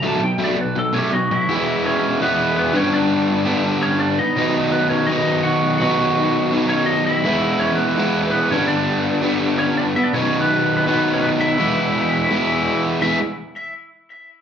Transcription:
<<
  \new Staff \with { instrumentName = "Lead electric guitar" } { \time 4/4 \key b \dorian \tempo 4 = 166 << { r2 r8 <cis' cis''>8 <dis' dis''>8 <e' e''>8~ | \key b \mixolydian <e' e''>4 <cis' cis''>4 <b b'>4 <b b'>8 <cis' cis''>8 | <d' d''>2 r8 <cis' cis''>8 <d' d''>8 <dis' dis''>8~ | <dis' dis''>4 <b b'>8 <cis' cis''>8 <dis' dis''>4 <fis' fis''>4 |
<fis' fis''>2 r8 <cis' cis''>8 <dis' dis''>8 <e' e''>8~ | <e' e''>4 <cis' cis''>8 <b b'>4. <b b'>8 <cis' cis''>8 | <d' d''>2 r8 <cis' cis''>8 <d' d''>8 <e' e''>16 <d' d''>16 | <cis' cis''>8. <b b'>4 <b b'>16 <b b'>8. <cis' cis''>16 <b b'>8 <e' e''>8~ |
<e' e''>2.~ <e' e''>8 r8 | e''8 r2. r8 | } \\ { a''8 g''8 d''8 b'8 a'8 g'8 fis'4 | r1 | r1 | r1 |
r1 | r1 | r1 | r1 |
r1 | r1 | } >> }
  \new Staff \with { instrumentName = "Overdriven electric guitar" } { \clef bass \time 4/4 \key b \dorian <b, fis a>8 <b, fis>8 <b, fis a>8 <b, fis>8 <b, fis>8 <b, fis a>8 <b, fis>8 <b, fis>8 | \key b \mixolydian <e gis b e'>2 <e gis b e'>4. <g, d g b d'>8~ | <g, d g b d'>4. <g, d g b d'>2 r8 | <b, dis fis b dis'>2 <b, dis fis b dis'>2 |
<b, dis fis b dis'>2 <b, dis fis b dis'>2 | <e gis b e'>2 <e gis b e'>4. <g, d g b d'>8~ | <g, d g b d'>4. <g, d g b d'>2 r8 | <b, dis fis b dis'>2 <b, dis fis b dis'>2 |
<e gis b e'>2 <e gis b e'>2 | <e gis b e' gis'>8 r2. r8 | }
>>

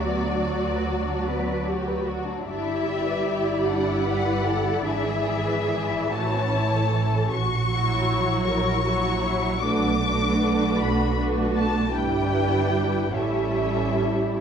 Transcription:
<<
  \new Staff \with { instrumentName = "Violin section" } { \time 6/8 \key e \dorian \tempo 4. = 50 d''2 r4 | e''4. fis''4. | e''4. a''4. | cis'''4. cis'''4. |
d'''4. b''8 r8 a''8 | g''4. e''4. | }
  \new Staff \with { instrumentName = "Cello section" } { \time 6/8 \key e \dorian fis'4. b'8 g'8 fis'8 | e'4. d'8 b'8 a'8 | gis'4. fis'8 e'8 a'8 | fis'4. ais'8 fis'8 e'8 |
d'4. fis'4. | e'4. e'4. | }
  \new Staff \with { instrumentName = "Violin section" } { \time 6/8 \key e \dorian << { d''2. | d''2.~ | d''4. cis''4. | r8 cis''4. cis''4 |
b'8 b'4. b'4 | b'4. a'4. | } \\ { b16 d'16 fis'16 b'16 fis'16 d'16 b16 d'16 fis'16 b'16 fis'16 d'16 | d'16 e'16 g'16 b'16 g'16 e'16 d'16 e'16 g'16 b'16 g'16 e'16 | d'16 e'16 gis'16 b'16 gis'16 e'16 a16 cis'16 e'16 a'16 e'16 cis'16 | r8 fis'4. fis'4 |
fis'8 fis'4. fis'4 | e'4. e'4. | } >> }
  \new Staff \with { instrumentName = "Viola section" } { \time 6/8 \key e \dorian << { fis'2. | e'2.~ | e'2. | r8 e'4. e'4 |
d'8 d'4. d'4 | d'4. cis'4. | } \\ { fis2. | g2. | e2. | r8 fis4. fis4 |
a8 a4. a4 | g4. g4. | } >> }
  \new Staff \with { instrumentName = "Double bass section" } { \clef bass \time 6/8 \key e \dorian d,2. | g,,2. | gis,,4. a,,4. | ais,,4. ais,,4. |
b,,4. b,,4. | g,,4. a,,4. | }
>>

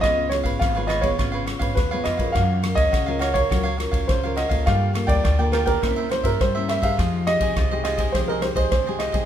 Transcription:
<<
  \new Staff \with { instrumentName = "Grand piano" } { \time 4/4 \key f \minor \tempo 4 = 104 ees''8 des''8 f''8 ees''16 des''4~ des''16 ces''8 ees''8 | f''8. ees''8. des''16 des''4~ des''16 c''8 ees''8 | f''8. d''8. bes'16 bes'8. c''16 bes'16 c''8 e''16 f''16~ | f''8 ees''4 ees''8 c''16 bes'16 c''16 c''16 c''8 ees''8 | }
  \new Staff \with { instrumentName = "Cavaquinho" } { \time 4/4 \key f \minor <f' ces'' des'' f''>8 r16 <ces'' des'' f''>16 <f' ces'' des'' f''>16 <ces'' des'' f''>16 <f' ces'' des'' f''>16 <ces'' des'' f''>16 <f' ces'' des'' f''>16 <ces'' des'' f''>16 r16 <ces'' des'' f''>8 <ces'' des'' f''>16 <f' ces'' des'' f''>16 <ces'' des'' f''>16 | <ges' bes' des'' f''>8 r16 <bes' des'' f''>16 <ges' bes' des'' f''>16 <bes' des'' f''>16 <ges' bes' des'' f''>16 <bes' des'' f''>16 <ges' bes' des'' f''>16 <bes' des'' f''>16 r16 <bes' des'' f''>8 <bes' des'' f''>16 <ges' bes' des'' f''>16 <bes' des'' f''>16 | <f' bes' d'' g''>8 r16 <bes' d'' g''>16 <f' bes' d'' g''>16 <bes' d'' g''>16 <f' bes' d'' g''>16 <bes' d'' g''>16 <e' bes' c'' e''>16 <bes' c'' e''>16 r16 <bes' c'' e''>8 <bes' c'' e''>16 <e' bes' c'' e''>16 <bes' c'' e''>16 | <f' aes' c'' ees''>8 r16 <aes' c'' ees''>16 <f' aes' c'' ees''>16 <aes' c'' ees''>16 <f' aes' c'' ees''>16 <aes' c'' ees''>16 <f' aes' c'' ees''>16 <aes' c'' ees''>16 r16 <aes' c'' ees''>8 <aes' c'' ees''>16 <f' aes' c'' ees''>16 <aes' c'' ees''>16 | }
  \new Staff \with { instrumentName = "Nylon-string guitar" } { \time 4/4 \key f \minor << { <aes ces' f'>8 <aes ces' f'>8. <aes ces' f'>8 <aes ces' f'>16 <aes ces' f'>8 <aes ces' f'>8. <aes ces' f'>8 <des' f' bes'>16~ | <des' f' bes'>8 <des' f' bes'>8 r16 <des' f' bes'>8 <des' f' bes'>16 <des' f' bes'>16 r16 <des' f' bes'>8. <des' f' bes'>8 <bes f' a'>16~ | <bes f' a'>8 <bes f' a'>8 r16 <bes f' a'>8. <bes des' e'>8 <bes des' e'>8 r16 <bes des' e'>8 <aes ees' g'>16~ | <aes ees' g'>8 <aes ees' g'>8. <aes ees' g'>8. <aes ees' g'>8 <aes ees' g'>8 r16 <aes ees' g'>8 <aes ees' g'>16 | } \\ { des4 aes,4 des4 aes,4 | ges4 des4 ges4 des4 | g4 d4 c4 g4 | f4 c4 f4 c4 | } >> }
  \new Staff \with { instrumentName = "Upright bass" } { \clef bass \time 4/4 \key f \minor des,8. aes,,16 aes,,4 aes,,8. aes,,16 ees,8 f,8 | ges,8. des,16 des,4 des,8. des,16 des,8. des,16 | g,8. d,16 d,4 c,8. g,16 g,8. g,16 | f,8. c,16 c,4 c,8. c,16 c,8. c,16 | }
  \new DrumStaff \with { instrumentName = "Drums" } \drummode { \time 4/4 <bd cymr ss>8 <cymr ss>16 <bd cymr>16 <bd cymr ss>8 <cymr ss>16 <bd cymr>16 <bd cymr ss>8 <cymr ss>16 <bd cymr>16 <bd cymr ss>8 <cymr ss>16 <bd cymr>16 | <bd cymr ss>8 <cymr ss>16 <bd cymr>16 <bd cymr ss>8 <cymr ss>16 <bd cymr>16 <bd cymr ss>8 <cymr ss>16 <bd cymr>16 <bd cymr ss>8 <cymr ss>16 <bd cymr>16 | <bd cymr ss>8 <cymr ss>16 <bd cymr>16 <bd cymr ss>8 <cymr ss>16 <bd cymr>16 <bd cymr ss>8 <cymr ss>16 <bd cymr>16 <bd cymr ss>8 <cymr ss>16 <bd cymr>16 | <bd cymr ss>8 <cymr ss>16 <bd cymr>16 <bd cymr ss>8 <cymr ss>16 <bd cymr>16 <bd cymr ss>8 <cymr ss>16 <bd cymr>16 <bd cymr ss>8 <cymr ss>16 <bd cymr>16 | }
>>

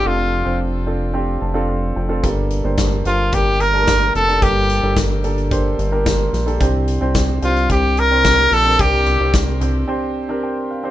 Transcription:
<<
  \new Staff \with { instrumentName = "Trumpet" } { \time 4/4 \key g \minor \tempo 4 = 110 f'4 r2. | r4. f'8 g'8 bes'4 a'8 | g'4 r2. | r4. f'8 g'8 bes'4 a'8 |
g'4 r2. | }
  \new Staff \with { instrumentName = "Grand piano" } { \time 4/4 \key g \minor << { r2 r8 a''16 f''16 f''8 g''8 | g,4. r2 r8 | g,4. r2 r8 | c4. r2 r8 |
c4. r4. g''8 f''8 | } \\ { <c' d' f' a'>8 r16 <c' d' f' c''>8 r16 <c' d' f' a'>16 r16 <c' d' f' g'>8 r16 <c' d' f' a'>8. r16 <c' d' f' a'>16 | <bes d' g' a'>8 r16 <bes d' g' c''>8 r16 <bes d' g' c''>16 r16 <bes d' g' bes'>8 r16 <a bes d' g' a''>8. r16 <bes d' g' a'>16 | <bes d' g' a'>8 r16 <bes d' g' a'>8 r16 <bes d' g' a'>16 r16 <bes d' g' c''>8 r16 <bes d' g' bes'>8. r16 <bes d' g' a'>16 | <c' d' g' c''>8 r16 <c' d' g' c''>8 r16 <c' d' g' c''>16 r16 <c' d' g' c''>8 r16 <c' d' g' c''>8. r16 <c' d' g' bes'>16 |
<c' d' g' bes'>8 r16 <c' d' g' c''>8 r16 <c' d' g' c''>16 r16 <c' d' g' c''>8 r16 <c' d' g' bes'>8. r16 <c' d' g' c''>16 | } >> }
  \new Staff \with { instrumentName = "Analog synth bass" } { \clef bass \time 4/4 \key g \minor f,,8. f,,4.~ f,,16 f,,4 f,,8 | g,,8. g,,8. g,,8 g,,4. f,,8 | g,,8. g,,4.~ g,,16 g,,4 bes,,8 | c,8. c,8. c,8 c,4. bes,,8 |
c,8. c,4~ c,16 r2 | }
  \new DrumStaff \with { instrumentName = "Drums" } \drummode { \time 4/4 r4 r4 r4 r4 | <hh bd>8 hh8 <hh bd sn>8 hh8 <hh bd>8 hh8 <hh bd sn>8 hh16 hh16 | <hh bd>8 hh8 <hh bd sn>8 hh16 hh16 <hh bd>8 hh8 <hh bd sn>8 <hh sn>16 hh16 | <hh bd>8 hh8 <hh bd sn>8 hh16 hh16 <hh bd>8 hh8 <hh bd sn>8 <hh sn>8 |
<hh bd>8 <hh tomfh>8 <hh bd sn>8 <hh tomfh>8 r4 r4 | }
>>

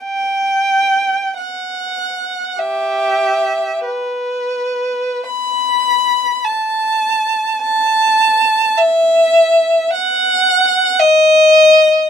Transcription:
\new Staff \with { instrumentName = "Violin" } { \time 6/8 \key e \minor \tempo 4. = 51 g''4. fis''4. | <g' e''>4. b'4. | b''4. a''4. | a''4. e''4. |
fis''4. dis''4. | }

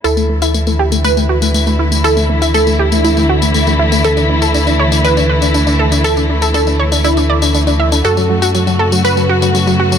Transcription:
<<
  \new Staff \with { instrumentName = "Synth pluck" } { \time 4/4 \key d \major \tempo 4 = 120 a'2 b'2 | a'4 a'4 e'4. r8 | a'2 b'2 | a'4 a'4 e'4. r8 |
a'2 b'2 | }
  \new Staff \with { instrumentName = "Synth pluck" } { \time 4/4 \key d \major e'16 a16 a16 e'16 a16 a16 g'16 a16 a16 a16 fis'16 a16 a16 a16 e'16 a16 | e'16 a16 a16 e'16 a16 a16 g'16 a16 a16 a16 fis'16 a16 a16 a16 e'16 a16 | a'16 d'16 d'16 a'16 d'16 d'16 cis''16 d'16 d'16 d'16 b'16 d'16 d'16 d'16 a'16 d'16 | a'16 d'16 d'16 a'16 d'16 d'16 cis''16 d'16 d'16 d'16 d''16 d'16 d'16 d'16 e''16 d'16 |
fis'16 fis16 fis16 fis'16 fis16 fis16 a'16 fis16 fis16 fis16 fis'16 fis16 fis16 fis16 fis'16 fis16 | }
  \new Staff \with { instrumentName = "String section" } { \clef bass \time 4/4 \key d \major << { <d e e'>1~ | <d e e'>1~ | <d e e'>1~ | <d e e'>1 |
<cis fis fis'>1 | } \\ { a1~ | a1~ | a1~ | a1~ |
a1 | } >> }
  \new Staff \with { instrumentName = "Analog synth bass" } { \clef bass \time 4/4 \key d \major d,1~ | d,1~ | d,1~ | d,1 |
fis,1 | }
  \new DrumStaff \with { instrumentName = "Drums" } \drummode { \time 4/4 tamb16 tamb8 tamb16 tamb16 tamb8 tamb16 tamb16 tamb8 tamb16 tamb16 tamb8 tamb16 | tamb16 tamb8 tamb16 tamb16 tamb8 tamb16 tamb16 tamb8 tamb16 tamb16 tamb8 tamb16 | tamb16 tamb8 tamb16 tamb16 tamb8 tamb16 tamb16 tamb8 tamb16 tamb16 tamb8 tamb16 | tamb16 tamb8 tamb16 tamb16 tamb8 tamb16 tamb16 tamb8 tamb16 tamb16 tamb8 tamb16 |
tamb16 tamb8 tamb16 tamb16 tamb8 tamb16 tamb16 tamb8 tamb16 tamb16 tamb8 tamb16 | }
>>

